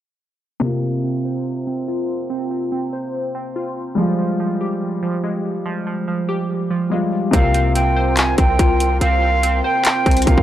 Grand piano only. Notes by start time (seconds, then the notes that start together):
0.60 C3 A#3
0.65 F4
3.95 G3 G#3
4.00 F4
6.90 G3 G#3 F4
7.31 C3 A#3
7.36 F4
10.26 C3 A#3 F4